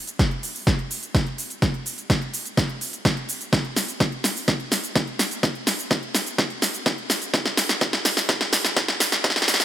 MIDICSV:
0, 0, Header, 1, 2, 480
1, 0, Start_track
1, 0, Tempo, 476190
1, 1635, Time_signature, 4, 2, 24, 8
1, 9726, End_track
2, 0, Start_track
2, 0, Title_t, "Drums"
2, 75, Note_on_c, 9, 42, 49
2, 79, Note_on_c, 9, 82, 41
2, 176, Note_off_c, 9, 42, 0
2, 180, Note_off_c, 9, 82, 0
2, 195, Note_on_c, 9, 36, 121
2, 195, Note_on_c, 9, 38, 57
2, 195, Note_on_c, 9, 42, 49
2, 199, Note_on_c, 9, 82, 30
2, 296, Note_off_c, 9, 36, 0
2, 296, Note_off_c, 9, 38, 0
2, 296, Note_off_c, 9, 42, 0
2, 300, Note_off_c, 9, 82, 0
2, 315, Note_on_c, 9, 42, 25
2, 416, Note_off_c, 9, 42, 0
2, 435, Note_on_c, 9, 46, 107
2, 439, Note_on_c, 9, 82, 69
2, 536, Note_off_c, 9, 46, 0
2, 540, Note_off_c, 9, 82, 0
2, 555, Note_on_c, 9, 46, 63
2, 559, Note_on_c, 9, 82, 41
2, 656, Note_off_c, 9, 46, 0
2, 660, Note_off_c, 9, 82, 0
2, 675, Note_on_c, 9, 36, 116
2, 675, Note_on_c, 9, 38, 60
2, 675, Note_on_c, 9, 42, 50
2, 679, Note_on_c, 9, 82, 31
2, 776, Note_off_c, 9, 36, 0
2, 776, Note_off_c, 9, 38, 0
2, 776, Note_off_c, 9, 42, 0
2, 780, Note_off_c, 9, 82, 0
2, 795, Note_on_c, 9, 42, 24
2, 896, Note_off_c, 9, 42, 0
2, 915, Note_on_c, 9, 46, 108
2, 919, Note_on_c, 9, 82, 70
2, 1016, Note_off_c, 9, 46, 0
2, 1020, Note_off_c, 9, 82, 0
2, 1035, Note_on_c, 9, 42, 49
2, 1039, Note_on_c, 9, 82, 42
2, 1136, Note_off_c, 9, 42, 0
2, 1140, Note_off_c, 9, 82, 0
2, 1155, Note_on_c, 9, 36, 120
2, 1155, Note_on_c, 9, 38, 64
2, 1155, Note_on_c, 9, 42, 51
2, 1159, Note_on_c, 9, 82, 31
2, 1256, Note_off_c, 9, 36, 0
2, 1256, Note_off_c, 9, 38, 0
2, 1256, Note_off_c, 9, 42, 0
2, 1260, Note_off_c, 9, 82, 0
2, 1275, Note_on_c, 9, 42, 25
2, 1376, Note_off_c, 9, 42, 0
2, 1395, Note_on_c, 9, 46, 105
2, 1399, Note_on_c, 9, 82, 71
2, 1495, Note_off_c, 9, 46, 0
2, 1500, Note_off_c, 9, 82, 0
2, 1515, Note_on_c, 9, 42, 49
2, 1519, Note_on_c, 9, 82, 39
2, 1616, Note_off_c, 9, 42, 0
2, 1620, Note_off_c, 9, 82, 0
2, 1635, Note_on_c, 9, 36, 120
2, 1635, Note_on_c, 9, 38, 63
2, 1635, Note_on_c, 9, 42, 49
2, 1639, Note_on_c, 9, 82, 30
2, 1736, Note_off_c, 9, 36, 0
2, 1736, Note_off_c, 9, 38, 0
2, 1736, Note_off_c, 9, 42, 0
2, 1740, Note_off_c, 9, 82, 0
2, 1755, Note_on_c, 9, 42, 24
2, 1856, Note_off_c, 9, 42, 0
2, 1874, Note_on_c, 9, 46, 102
2, 1879, Note_on_c, 9, 82, 71
2, 1975, Note_off_c, 9, 46, 0
2, 1980, Note_off_c, 9, 82, 0
2, 1995, Note_on_c, 9, 42, 47
2, 1999, Note_on_c, 9, 82, 41
2, 2096, Note_off_c, 9, 42, 0
2, 2100, Note_off_c, 9, 82, 0
2, 2115, Note_on_c, 9, 36, 121
2, 2115, Note_on_c, 9, 38, 66
2, 2115, Note_on_c, 9, 42, 49
2, 2119, Note_on_c, 9, 82, 31
2, 2216, Note_off_c, 9, 36, 0
2, 2216, Note_off_c, 9, 38, 0
2, 2216, Note_off_c, 9, 42, 0
2, 2220, Note_off_c, 9, 82, 0
2, 2235, Note_on_c, 9, 42, 23
2, 2336, Note_off_c, 9, 42, 0
2, 2355, Note_on_c, 9, 46, 104
2, 2359, Note_on_c, 9, 82, 74
2, 2456, Note_off_c, 9, 46, 0
2, 2460, Note_off_c, 9, 82, 0
2, 2475, Note_on_c, 9, 42, 48
2, 2479, Note_on_c, 9, 82, 42
2, 2576, Note_off_c, 9, 42, 0
2, 2580, Note_off_c, 9, 82, 0
2, 2595, Note_on_c, 9, 36, 113
2, 2595, Note_on_c, 9, 38, 70
2, 2595, Note_on_c, 9, 42, 50
2, 2599, Note_on_c, 9, 82, 33
2, 2695, Note_off_c, 9, 38, 0
2, 2695, Note_off_c, 9, 42, 0
2, 2696, Note_off_c, 9, 36, 0
2, 2700, Note_off_c, 9, 82, 0
2, 2715, Note_on_c, 9, 42, 25
2, 2816, Note_off_c, 9, 42, 0
2, 2835, Note_on_c, 9, 46, 104
2, 2839, Note_on_c, 9, 82, 74
2, 2936, Note_off_c, 9, 46, 0
2, 2940, Note_off_c, 9, 82, 0
2, 2955, Note_on_c, 9, 42, 48
2, 2959, Note_on_c, 9, 82, 42
2, 3056, Note_off_c, 9, 42, 0
2, 3060, Note_off_c, 9, 82, 0
2, 3075, Note_on_c, 9, 36, 119
2, 3075, Note_on_c, 9, 38, 73
2, 3075, Note_on_c, 9, 42, 49
2, 3079, Note_on_c, 9, 82, 32
2, 3176, Note_off_c, 9, 36, 0
2, 3176, Note_off_c, 9, 38, 0
2, 3176, Note_off_c, 9, 42, 0
2, 3180, Note_off_c, 9, 82, 0
2, 3195, Note_on_c, 9, 42, 24
2, 3296, Note_off_c, 9, 42, 0
2, 3315, Note_on_c, 9, 46, 104
2, 3319, Note_on_c, 9, 82, 74
2, 3416, Note_off_c, 9, 46, 0
2, 3420, Note_off_c, 9, 82, 0
2, 3435, Note_on_c, 9, 42, 48
2, 3439, Note_on_c, 9, 82, 41
2, 3536, Note_off_c, 9, 42, 0
2, 3540, Note_off_c, 9, 82, 0
2, 3555, Note_on_c, 9, 36, 121
2, 3555, Note_on_c, 9, 38, 73
2, 3555, Note_on_c, 9, 42, 51
2, 3559, Note_on_c, 9, 82, 32
2, 3656, Note_off_c, 9, 36, 0
2, 3656, Note_off_c, 9, 38, 0
2, 3656, Note_off_c, 9, 42, 0
2, 3660, Note_off_c, 9, 82, 0
2, 3675, Note_on_c, 9, 42, 24
2, 3776, Note_off_c, 9, 42, 0
2, 3795, Note_on_c, 9, 38, 72
2, 3795, Note_on_c, 9, 46, 100
2, 3799, Note_on_c, 9, 82, 78
2, 3895, Note_off_c, 9, 38, 0
2, 3895, Note_off_c, 9, 46, 0
2, 3900, Note_off_c, 9, 82, 0
2, 3915, Note_on_c, 9, 42, 50
2, 3919, Note_on_c, 9, 82, 43
2, 4016, Note_off_c, 9, 42, 0
2, 4020, Note_off_c, 9, 82, 0
2, 4035, Note_on_c, 9, 36, 120
2, 4035, Note_on_c, 9, 38, 73
2, 4035, Note_on_c, 9, 42, 51
2, 4039, Note_on_c, 9, 82, 33
2, 4136, Note_off_c, 9, 36, 0
2, 4136, Note_off_c, 9, 38, 0
2, 4136, Note_off_c, 9, 42, 0
2, 4140, Note_off_c, 9, 82, 0
2, 4155, Note_on_c, 9, 42, 25
2, 4256, Note_off_c, 9, 42, 0
2, 4275, Note_on_c, 9, 38, 74
2, 4275, Note_on_c, 9, 46, 99
2, 4279, Note_on_c, 9, 82, 76
2, 4376, Note_off_c, 9, 38, 0
2, 4376, Note_off_c, 9, 46, 0
2, 4380, Note_off_c, 9, 82, 0
2, 4395, Note_on_c, 9, 46, 60
2, 4399, Note_on_c, 9, 82, 44
2, 4495, Note_off_c, 9, 46, 0
2, 4500, Note_off_c, 9, 82, 0
2, 4515, Note_on_c, 9, 36, 110
2, 4515, Note_on_c, 9, 38, 79
2, 4515, Note_on_c, 9, 42, 52
2, 4519, Note_on_c, 9, 82, 33
2, 4615, Note_off_c, 9, 38, 0
2, 4615, Note_off_c, 9, 42, 0
2, 4616, Note_off_c, 9, 36, 0
2, 4620, Note_off_c, 9, 82, 0
2, 4635, Note_on_c, 9, 42, 25
2, 4735, Note_off_c, 9, 42, 0
2, 4755, Note_on_c, 9, 38, 78
2, 4755, Note_on_c, 9, 46, 105
2, 4759, Note_on_c, 9, 82, 78
2, 4855, Note_off_c, 9, 38, 0
2, 4855, Note_off_c, 9, 46, 0
2, 4860, Note_off_c, 9, 82, 0
2, 4875, Note_on_c, 9, 42, 50
2, 4879, Note_on_c, 9, 82, 44
2, 4975, Note_off_c, 9, 42, 0
2, 4980, Note_off_c, 9, 82, 0
2, 4995, Note_on_c, 9, 36, 115
2, 4995, Note_on_c, 9, 38, 83
2, 4995, Note_on_c, 9, 42, 50
2, 4999, Note_on_c, 9, 82, 34
2, 5095, Note_off_c, 9, 38, 0
2, 5095, Note_off_c, 9, 42, 0
2, 5096, Note_off_c, 9, 36, 0
2, 5100, Note_off_c, 9, 82, 0
2, 5115, Note_on_c, 9, 42, 25
2, 5215, Note_off_c, 9, 42, 0
2, 5235, Note_on_c, 9, 38, 77
2, 5235, Note_on_c, 9, 46, 104
2, 5239, Note_on_c, 9, 82, 75
2, 5336, Note_off_c, 9, 38, 0
2, 5336, Note_off_c, 9, 46, 0
2, 5340, Note_off_c, 9, 82, 0
2, 5355, Note_on_c, 9, 42, 49
2, 5359, Note_on_c, 9, 82, 43
2, 5456, Note_off_c, 9, 42, 0
2, 5460, Note_off_c, 9, 82, 0
2, 5475, Note_on_c, 9, 36, 112
2, 5475, Note_on_c, 9, 38, 80
2, 5475, Note_on_c, 9, 42, 52
2, 5479, Note_on_c, 9, 82, 35
2, 5576, Note_off_c, 9, 36, 0
2, 5576, Note_off_c, 9, 38, 0
2, 5576, Note_off_c, 9, 42, 0
2, 5580, Note_off_c, 9, 82, 0
2, 5595, Note_on_c, 9, 42, 26
2, 5696, Note_off_c, 9, 42, 0
2, 5715, Note_on_c, 9, 38, 82
2, 5715, Note_on_c, 9, 46, 98
2, 5719, Note_on_c, 9, 82, 82
2, 5816, Note_off_c, 9, 38, 0
2, 5816, Note_off_c, 9, 46, 0
2, 5820, Note_off_c, 9, 82, 0
2, 5835, Note_on_c, 9, 42, 52
2, 5839, Note_on_c, 9, 82, 45
2, 5936, Note_off_c, 9, 42, 0
2, 5940, Note_off_c, 9, 82, 0
2, 5955, Note_on_c, 9, 36, 115
2, 5955, Note_on_c, 9, 38, 86
2, 5955, Note_on_c, 9, 42, 53
2, 5959, Note_on_c, 9, 82, 35
2, 6056, Note_off_c, 9, 36, 0
2, 6056, Note_off_c, 9, 38, 0
2, 6056, Note_off_c, 9, 42, 0
2, 6060, Note_off_c, 9, 82, 0
2, 6075, Note_on_c, 9, 42, 27
2, 6176, Note_off_c, 9, 42, 0
2, 6195, Note_on_c, 9, 38, 83
2, 6195, Note_on_c, 9, 46, 100
2, 6199, Note_on_c, 9, 82, 79
2, 6295, Note_off_c, 9, 38, 0
2, 6295, Note_off_c, 9, 46, 0
2, 6300, Note_off_c, 9, 82, 0
2, 6315, Note_on_c, 9, 42, 50
2, 6319, Note_on_c, 9, 82, 44
2, 6416, Note_off_c, 9, 42, 0
2, 6420, Note_off_c, 9, 82, 0
2, 6435, Note_on_c, 9, 36, 109
2, 6435, Note_on_c, 9, 38, 89
2, 6435, Note_on_c, 9, 42, 53
2, 6439, Note_on_c, 9, 82, 36
2, 6536, Note_off_c, 9, 36, 0
2, 6536, Note_off_c, 9, 38, 0
2, 6536, Note_off_c, 9, 42, 0
2, 6540, Note_off_c, 9, 82, 0
2, 6555, Note_on_c, 9, 42, 27
2, 6656, Note_off_c, 9, 42, 0
2, 6675, Note_on_c, 9, 38, 86
2, 6675, Note_on_c, 9, 46, 100
2, 6679, Note_on_c, 9, 82, 79
2, 6775, Note_off_c, 9, 38, 0
2, 6775, Note_off_c, 9, 46, 0
2, 6780, Note_off_c, 9, 82, 0
2, 6795, Note_on_c, 9, 42, 52
2, 6799, Note_on_c, 9, 82, 47
2, 6896, Note_off_c, 9, 42, 0
2, 6900, Note_off_c, 9, 82, 0
2, 6915, Note_on_c, 9, 36, 112
2, 6915, Note_on_c, 9, 38, 90
2, 6915, Note_on_c, 9, 42, 52
2, 6919, Note_on_c, 9, 82, 35
2, 7015, Note_off_c, 9, 38, 0
2, 7015, Note_off_c, 9, 42, 0
2, 7016, Note_off_c, 9, 36, 0
2, 7020, Note_off_c, 9, 82, 0
2, 7035, Note_on_c, 9, 42, 25
2, 7136, Note_off_c, 9, 42, 0
2, 7155, Note_on_c, 9, 38, 91
2, 7155, Note_on_c, 9, 46, 99
2, 7159, Note_on_c, 9, 82, 77
2, 7255, Note_off_c, 9, 38, 0
2, 7255, Note_off_c, 9, 46, 0
2, 7260, Note_off_c, 9, 82, 0
2, 7275, Note_on_c, 9, 42, 52
2, 7279, Note_on_c, 9, 82, 45
2, 7375, Note_off_c, 9, 42, 0
2, 7380, Note_off_c, 9, 82, 0
2, 7395, Note_on_c, 9, 36, 115
2, 7395, Note_on_c, 9, 38, 89
2, 7395, Note_on_c, 9, 42, 56
2, 7399, Note_on_c, 9, 82, 35
2, 7496, Note_off_c, 9, 36, 0
2, 7496, Note_off_c, 9, 38, 0
2, 7496, Note_off_c, 9, 42, 0
2, 7500, Note_off_c, 9, 82, 0
2, 7515, Note_on_c, 9, 38, 78
2, 7515, Note_on_c, 9, 42, 27
2, 7616, Note_off_c, 9, 38, 0
2, 7616, Note_off_c, 9, 42, 0
2, 7635, Note_on_c, 9, 38, 94
2, 7635, Note_on_c, 9, 46, 99
2, 7639, Note_on_c, 9, 82, 80
2, 7735, Note_off_c, 9, 38, 0
2, 7735, Note_off_c, 9, 46, 0
2, 7740, Note_off_c, 9, 82, 0
2, 7755, Note_on_c, 9, 38, 82
2, 7755, Note_on_c, 9, 42, 54
2, 7759, Note_on_c, 9, 82, 46
2, 7855, Note_off_c, 9, 38, 0
2, 7855, Note_off_c, 9, 42, 0
2, 7860, Note_off_c, 9, 82, 0
2, 7875, Note_on_c, 9, 36, 114
2, 7875, Note_on_c, 9, 38, 91
2, 7875, Note_on_c, 9, 42, 55
2, 7879, Note_on_c, 9, 82, 35
2, 7976, Note_off_c, 9, 36, 0
2, 7976, Note_off_c, 9, 38, 0
2, 7976, Note_off_c, 9, 42, 0
2, 7980, Note_off_c, 9, 82, 0
2, 7995, Note_on_c, 9, 38, 85
2, 7995, Note_on_c, 9, 42, 27
2, 8096, Note_off_c, 9, 38, 0
2, 8096, Note_off_c, 9, 42, 0
2, 8115, Note_on_c, 9, 38, 96
2, 8115, Note_on_c, 9, 46, 98
2, 8119, Note_on_c, 9, 82, 81
2, 8216, Note_off_c, 9, 38, 0
2, 8216, Note_off_c, 9, 46, 0
2, 8220, Note_off_c, 9, 82, 0
2, 8235, Note_on_c, 9, 38, 87
2, 8239, Note_on_c, 9, 82, 48
2, 8336, Note_off_c, 9, 38, 0
2, 8340, Note_off_c, 9, 82, 0
2, 8355, Note_on_c, 9, 36, 108
2, 8355, Note_on_c, 9, 38, 99
2, 8360, Note_on_c, 9, 82, 36
2, 8456, Note_off_c, 9, 36, 0
2, 8456, Note_off_c, 9, 38, 0
2, 8460, Note_off_c, 9, 82, 0
2, 8475, Note_on_c, 9, 38, 86
2, 8475, Note_on_c, 9, 42, 27
2, 8576, Note_off_c, 9, 38, 0
2, 8576, Note_off_c, 9, 42, 0
2, 8595, Note_on_c, 9, 38, 100
2, 8595, Note_on_c, 9, 46, 102
2, 8599, Note_on_c, 9, 82, 84
2, 8696, Note_off_c, 9, 38, 0
2, 8696, Note_off_c, 9, 46, 0
2, 8700, Note_off_c, 9, 82, 0
2, 8715, Note_on_c, 9, 38, 86
2, 8715, Note_on_c, 9, 42, 54
2, 8719, Note_on_c, 9, 82, 48
2, 8816, Note_off_c, 9, 38, 0
2, 8816, Note_off_c, 9, 42, 0
2, 8820, Note_off_c, 9, 82, 0
2, 8835, Note_on_c, 9, 36, 112
2, 8835, Note_on_c, 9, 38, 102
2, 8835, Note_on_c, 9, 42, 55
2, 8840, Note_on_c, 9, 82, 35
2, 8936, Note_off_c, 9, 36, 0
2, 8936, Note_off_c, 9, 38, 0
2, 8936, Note_off_c, 9, 42, 0
2, 8940, Note_off_c, 9, 82, 0
2, 8955, Note_on_c, 9, 38, 88
2, 8955, Note_on_c, 9, 42, 26
2, 9056, Note_off_c, 9, 38, 0
2, 9056, Note_off_c, 9, 42, 0
2, 9075, Note_on_c, 9, 38, 100
2, 9075, Note_on_c, 9, 46, 99
2, 9079, Note_on_c, 9, 82, 85
2, 9176, Note_off_c, 9, 38, 0
2, 9176, Note_off_c, 9, 46, 0
2, 9180, Note_off_c, 9, 82, 0
2, 9195, Note_on_c, 9, 38, 89
2, 9195, Note_on_c, 9, 42, 54
2, 9200, Note_on_c, 9, 82, 46
2, 9296, Note_off_c, 9, 38, 0
2, 9296, Note_off_c, 9, 42, 0
2, 9300, Note_off_c, 9, 82, 0
2, 9315, Note_on_c, 9, 36, 119
2, 9315, Note_on_c, 9, 38, 99
2, 9315, Note_on_c, 9, 42, 56
2, 9320, Note_on_c, 9, 82, 35
2, 9375, Note_off_c, 9, 38, 0
2, 9375, Note_on_c, 9, 38, 92
2, 9416, Note_off_c, 9, 36, 0
2, 9416, Note_off_c, 9, 42, 0
2, 9420, Note_off_c, 9, 82, 0
2, 9435, Note_off_c, 9, 38, 0
2, 9435, Note_on_c, 9, 38, 87
2, 9435, Note_on_c, 9, 46, 59
2, 9495, Note_off_c, 9, 38, 0
2, 9495, Note_on_c, 9, 38, 88
2, 9536, Note_off_c, 9, 46, 0
2, 9555, Note_off_c, 9, 38, 0
2, 9555, Note_on_c, 9, 38, 104
2, 9555, Note_on_c, 9, 46, 102
2, 9559, Note_on_c, 9, 82, 80
2, 9615, Note_off_c, 9, 38, 0
2, 9615, Note_on_c, 9, 38, 92
2, 9656, Note_off_c, 9, 46, 0
2, 9660, Note_off_c, 9, 82, 0
2, 9675, Note_off_c, 9, 38, 0
2, 9675, Note_on_c, 9, 38, 88
2, 9675, Note_on_c, 9, 42, 56
2, 9680, Note_on_c, 9, 82, 47
2, 9726, Note_off_c, 9, 38, 0
2, 9726, Note_off_c, 9, 42, 0
2, 9726, Note_off_c, 9, 82, 0
2, 9726, End_track
0, 0, End_of_file